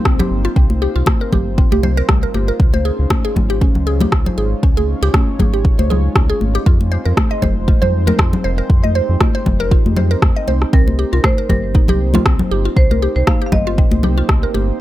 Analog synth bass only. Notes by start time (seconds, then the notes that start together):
0.05 C2
0.31 G1
0.56 C2
0.96 C2
1.33 G1
1.72 C2
2.09 C2
2.34 G1
2.60 C#2
2.99 C#2
3.36 G#1
3.75 C#2
4.12 C#2
4.38 G#1
4.63 C#2
5.02 C#2
5.39 G#1
5.79 C#2
6.16 C#2
6.41 G#1
6.66 F2
7.06 F2
7.42 F1
7.82 F2
8.19 F2
8.44 F1
8.70 F2
9.09 F2
9.46 F1
9.85 F2
10.22 F2
10.48 C2
10.73 C2
11.13 C2
11.49 G1
11.89 C2
12.26 C2
12.51 G1
12.76 C2
13.16 C2
13.53 G1
13.92 C2
14.29 C2
14.55 G1